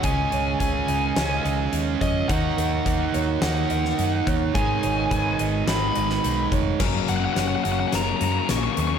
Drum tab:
CC |----------------|----------------|----------------|x---------------|
HH |x-x-x-x-x-x-x-x-|x-x-x-x-x-x-x-x-|x-x-x-x-x-x-x-x-|--x-x-x-x-x-x-x-|
SD |--------o-------|--------o--o----|--------o--o----|o---o---o---o---|
BD |o---o---------o-|o---o---------o-|o---o---------o-|o---------------|